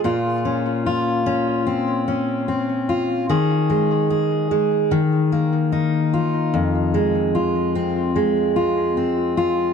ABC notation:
X:1
M:4/4
L:1/8
Q:1/4=74
K:Fm
V:1 name="Steel-string acoustic guitar"
[B,,F] D F D C D C F | [E,A] A, A A, E, B, E F | F,, A, F C A, F C F |]